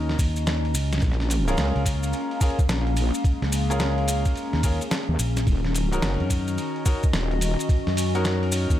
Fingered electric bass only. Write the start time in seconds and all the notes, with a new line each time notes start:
Already playing: D#2
0.19 D#2
0.74 C#2
1.76 C#2
3.42 C#2
4.53 D#2
5.19 A#1
6.20 F#2
7.87 F#2
8.70 D#2